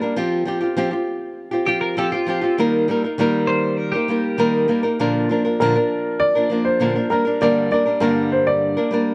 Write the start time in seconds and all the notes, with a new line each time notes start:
0.01 G3 A#3 D4 A#4
0.16 F3 C4 F4 G4
0.45 F3 C4 F4 G4
0.61 C4 F4 G4
0.77 F3 C4 F4 G4
0.91 C4 F4 G4
1.51 C4 F4 G4
1.66 F3 C4 F4 G4
1.81 A#4
1.97 F3 C4 F4 G4 A4
2.12 C4 F4 G4
2.27 F3 C4 F4 G4
2.41 C4 F4 G4
2.58 D#3 G3 A#3 D#4 A#4
2.88 G3 A#3 D#4 A#4
3.04 A#3 D#4 A#4
3.18 D#3 G3 A#3 D#4 A#4
3.47 C5
3.77 A#4
3.92 D#4 G4 A#4
3.96 A#3
4.08 G3 A#3 D#4 A#4
4.38 D#3 G3 A#3 D#4 A#4
4.68 G3 A#3 D#4 A#4
4.83 A#3 D#4 A#4
4.99 A#2 D3 F3 A#3 D4 A#4
5.29 F3 A#3 D4 A#4
5.45 F3 A#3 D4 A#4
5.60 A#2 D3 F3 A#3 D4 A#4
5.75 F3 A#3 D4 A#4
6.20 D5
6.35 F3 A#3 D4 A#4
6.50 F3 A#3 D4 A#4
6.65 C5
6.80 A#2 D3 F3 A#3 D4 A#4
6.96 F3 A#3 D4 A#4
7.10 G3 A#3 D4 A#4
7.25 G3 A#3 D4 A#4
7.41 G2 D3 G3 A#3 D4 A#4 D5
7.71 G3 A#3 D4 A#4 D5
7.86 G3 A#3 D4 A#4
8.00 G2 D3 G3 A#3 D4 A#4
8.32 C5
8.47 D5
8.77 G3 A#3 D4 A#4
8.91 G3 A#3 D4 A#4